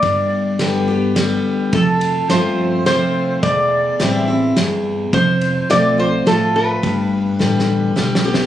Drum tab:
RD |x-----x-----x-----|x--x--x-----x-----|x-----x-----x-----|x--x--x-----x-----|
SD |------o-----o-----|------o-----o-----|------o-----o-----|------o-----o-----|
BD |o-----------------|o-----------------|o-----------------|o-----------------|

RD |x-----------------|
SD |------o-o---o-o-o-|
BD |o-----------------|